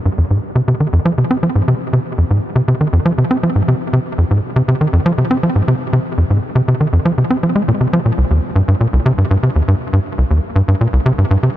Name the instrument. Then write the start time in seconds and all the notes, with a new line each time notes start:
analog synth bass
0.06 G2
0.18 F2
0.31 G#2
0.56 C3
0.68 C3
0.80 D#3
0.93 F2
1.06 F3
1.18 C3
1.31 C4
1.43 F3
1.56 G#2
1.68 C3
1.93 C3
2.18 F2
2.31 G#2
2.56 C3
2.68 C3
2.81 D#3
2.93 F2
3.06 F3
3.18 C3
3.31 C4
3.43 F3
3.56 G#2
3.68 C3
3.93 C3
4.18 F2
4.31 G#2
4.56 C3
4.68 C3
4.81 D#3
4.93 F2
5.06 F3
5.18 C3
5.31 C4
5.43 F3
5.56 G#2
5.68 C3
5.93 C3
6.18 F2
6.31 G#2
6.56 C3
6.68 C3
6.81 D#3
6.93 F2
7.06 F3
7.18 C3
7.31 C4
7.43 F3
7.56 G#3
7.68 A#2
7.81 C3
7.93 F3
8.06 A#2
8.18 C2
8.31 D#2
8.56 G2
8.68 G2
8.81 A#2
8.93 C2
9.06 C3
9.18 G2
9.31 G2
9.43 C3
9.56 D#2
9.68 G2
9.93 G2
10.18 C2
10.31 D#2
10.56 G2
10.68 G2
10.81 A#2
10.93 C2
11.06 C3
11.18 G2
11.31 G2
11.43 C3